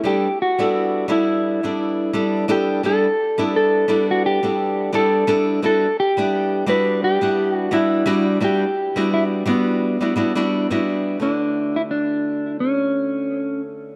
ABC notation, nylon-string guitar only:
X:1
M:4/4
L:1/16
Q:"Swing 16ths" 1/4=86
K:Amix
V:1 name="Nylon-string guitar"
[G,B,DEA] z2 [G,B,DEA]3 [G,B,DEA]3 [G,B,DEA]3 [G,B,DEA]2 [G,B,DEA]2 | [G,B,DEA] z2 [G,B,DEA]3 [G,B,DEA]3 [G,B,DEA]3 [G,B,DEA]2 [G,B,DEA]2 | [G,B,DEF] z2 [G,B,DEf]3 [G,B,DEF]3 [G,B,DEf]3 [G,B,DEF]2 [G,B,DEF]2 | [G,B,DEF] z2 [G,B,DEF]3 [G,B,DEF]3 [G,B,DEF] [G,B,DEF] [G,B,DEF]2 [G,B,DEF]3 |
[D,A,EFc]16 |]